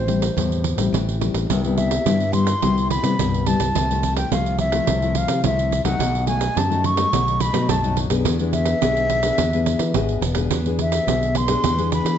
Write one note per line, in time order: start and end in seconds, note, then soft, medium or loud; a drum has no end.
0.00 0.28 A1 medium
0.00 0.34 E3 medium
0.00 0.89 C5 medium
0.07 0.24 G3 soft
0.07 0.25 C4 soft
0.07 0.25 E4 medium
0.07 pandeiro medium
0.22 pandeiro medium
0.37 0.73 E2 medium
0.37 0.90 A2 medium
0.37 0.75 G3 medium
0.37 0.75 C4 soft
0.37 0.75 E4 medium
0.37 pandeiro medium
0.52 pandeiro soft
0.64 pandeiro medium
0.77 0.90 A1 medium
0.77 1.16 G3 medium
0.77 1.16 C4 medium
0.77 1.16 E4 medium
0.77 pandeiro medium
0.93 1.29 A1 medium
0.93 1.47 E3 soft
0.93 pandeiro medium
1.09 pandeiro soft
1.20 1.44 G3 soft
1.20 1.44 C4 soft
1.20 1.45 E4 medium
1.20 pandeiro medium
1.34 1.47 A1 medium
1.34 pandeiro medium
1.50 1.98 C2 loud
1.50 2.03 C3 medium
1.50 1.59 G3 medium
1.50 1.60 B3 medium
1.50 1.60 E4 medium
1.50 pandeiro medium
1.64 2.02 G3 medium
1.64 2.02 B3 medium
1.64 2.02 E4 medium
1.64 pandeiro soft
1.77 2.34 E5 medium
1.77 pandeiro medium
1.91 pandeiro medium
2.06 2.59 G2 medium
2.06 2.54 G2 medium
2.06 2.22 G3 medium
2.06 2.23 B3 medium
2.06 2.23 E4 medium
2.06 pandeiro medium
2.20 pandeiro soft
2.33 2.50 G3 medium
2.33 2.50 B3 medium
2.33 2.51 E4 medium
2.33 2.90 C6 loud
2.33 pandeiro medium
2.47 pandeiro medium
2.62 2.98 C2 medium
2.62 3.16 C3 medium
2.62 3.00 G3 medium
2.62 3.00 B3 medium
2.62 3.00 E4 medium
2.62 pandeiro medium
2.78 pandeiro soft
2.90 3.48 B5 loud
2.90 pandeiro medium
3.03 3.16 C3 medium
3.03 3.14 G3 medium
3.03 3.14 B3 medium
3.03 3.14 E4 medium
3.03 pandeiro medium
3.19 3.55 C2 medium
3.19 3.73 G2 medium
3.19 3.43 G3 medium
3.19 3.43 B3 medium
3.19 3.43 E4 medium
3.19 pandeiro medium
3.34 pandeiro soft
3.46 3.65 G3 medium
3.46 3.65 B3 soft
3.46 3.65 E4 medium
3.46 4.16 A5 medium
3.46 pandeiro medium
3.60 3.72 C2 medium
3.60 pandeiro medium
3.75 4.23 C2 loud
3.75 4.29 C3 medium
3.75 3.84 F3 medium
3.75 3.84 A3 medium
3.75 3.84 E4 medium
3.75 pandeiro medium
3.91 4.28 F3 medium
3.91 4.28 A3 medium
3.91 4.28 E4 medium
3.91 pandeiro soft
4.03 pandeiro medium
4.17 4.34 G5 medium
4.17 pandeiro medium
4.31 4.79 C2 medium
4.31 4.85 C3 medium
4.31 4.69 F3 medium
4.31 4.69 A3 medium
4.31 4.70 E4 medium
4.31 4.60 F5 medium
4.31 pandeiro medium
4.46 pandeiro soft
4.59 5.19 E5 medium
4.59 pandeiro medium
4.72 4.97 F3 medium
4.72 4.97 A3 medium
4.72 4.97 E4 medium
4.72 pandeiro medium
4.87 5.24 C2 medium
4.87 5.41 C3 medium
4.87 pandeiro medium
5.02 5.40 F3 medium
5.02 5.40 A3 medium
5.02 5.40 E4 medium
5.02 pandeiro soft
5.15 5.45 F5 medium
5.15 pandeiro medium
5.28 5.41 C3 medium
5.28 pandeiro medium
5.43 5.80 C2 medium
5.43 5.97 C3 medium
5.43 5.70 F3 medium
5.43 5.70 A3 medium
5.43 5.70 E4 medium
5.43 5.84 E5 medium
5.43 pandeiro medium
5.59 pandeiro soft
5.72 pandeiro medium
5.84 5.97 C2 medium
5.84 6.09 F#3 medium
5.84 6.09 A3 medium
5.84 6.09 D#4 medium
5.84 6.25 F#5 loud
5.84 pandeiro medium
5.99 6.48 B1 loud
5.99 6.54 B2 medium
5.99 pandeiro medium
6.15 pandeiro soft
6.27 6.66 F#3 medium
6.27 6.66 A3 medium
6.27 6.66 D#4 medium
6.27 6.59 G#5 medium
6.27 pandeiro medium
6.41 pandeiro medium
6.55 7.09 F#2 medium
6.55 7.04 F#2 medium
6.55 6.87 A5 medium
6.55 pandeiro medium
6.70 6.94 F#3 medium
6.70 6.94 A3 medium
6.70 6.94 D#4 medium
6.70 pandeiro soft
6.84 7.42 C#6 loud
6.84 pandeiro medium
6.97 7.07 F#3 medium
6.97 7.08 A3 medium
6.97 7.08 D#4 medium
6.97 pandeiro medium
7.13 7.49 B1 medium
7.13 7.66 B2 medium
7.13 7.51 F#3 medium
7.13 7.51 A3 medium
7.13 7.51 D#4 medium
7.13 pandeiro medium
7.28 pandeiro soft
7.40 7.71 B5 loud
7.40 pandeiro medium
7.53 7.66 B2 medium
7.53 7.78 F#3 medium
7.53 7.78 A3 medium
7.53 7.79 D#4 medium
7.53 pandeiro medium
7.69 8.05 B1 loud
7.69 8.23 F#2 medium
7.69 7.98 A5 medium
7.69 pandeiro medium
7.84 8.07 F#3 medium
7.84 8.07 A3 medium
7.84 8.08 D#4 medium
7.84 pandeiro soft
7.97 pandeiro medium
8.10 8.23 B1 medium
8.10 8.39 B3 medium
8.10 8.39 D4 medium
8.10 8.39 G#4 medium
8.10 pandeiro medium
8.25 8.73 E2 loud
8.25 8.79 E3 medium
8.25 pandeiro medium
8.39 8.78 B3 medium
8.39 8.78 D4 medium
8.39 8.78 G#4 medium
8.39 pandeiro soft
8.53 10.18 E5 loud
8.53 pandeiro medium
8.66 pandeiro medium
8.81 9.30 B1 medium
8.81 9.35 B2 medium
8.81 9.20 B3 soft
8.81 9.20 D4 medium
8.81 9.20 G#4 medium
8.81 pandeiro medium
8.97 pandeiro soft
9.10 pandeiro medium
9.23 9.47 B3 medium
9.23 9.48 D4 medium
9.23 9.48 G#4 medium
9.23 pandeiro medium
9.38 9.74 E2 medium
9.38 9.92 E3 medium
9.38 pandeiro medium
9.53 9.91 B3 medium
9.53 9.91 D4 medium
9.53 9.91 G#4 medium
9.53 pandeiro soft
9.66 pandeiro medium
9.79 9.92 E3 medium
9.79 pandeiro medium
9.94 10.20 G#1 medium
9.94 10.49 B2 medium
9.94 10.21 B3 medium
9.94 10.22 D4 soft
9.94 10.22 G#4 medium
9.94 pandeiro medium
10.09 pandeiro soft
10.21 10.47 E1 medium
10.21 pandeiro medium
10.35 10.60 B3 medium
10.35 10.61 D4 medium
10.35 10.61 G#4 medium
10.35 pandeiro medium
10.50 10.99 E2 loud
10.50 11.04 E3 medium
10.50 pandeiro medium
10.66 11.03 B3 medium
10.66 11.04 D4 medium
10.66 11.04 G#4 medium
10.66 pandeiro soft
10.79 11.38 E5 medium
10.79 pandeiro medium
10.92 pandeiro medium
11.07 11.55 B1 medium
11.07 11.61 B2 medium
11.07 11.45 B3 medium
11.07 11.45 D4 soft
11.07 11.45 G#4 medium
11.07 pandeiro medium
11.23 pandeiro soft
11.35 11.93 C6 loud
11.35 pandeiro medium
11.48 11.73 B3 medium
11.48 11.73 D4 medium
11.48 11.73 G#4 medium
11.48 pandeiro medium
11.63 12.00 E2 medium
11.63 12.17 E3 medium
11.63 pandeiro medium
11.78 12.15 B3 medium
11.78 12.15 D4 medium
11.78 12.16 G#4 medium
11.78 pandeiro soft
11.92 12.18 B5 loud
11.92 pandeiro medium
12.05 12.17 E3 medium
12.05 pandeiro medium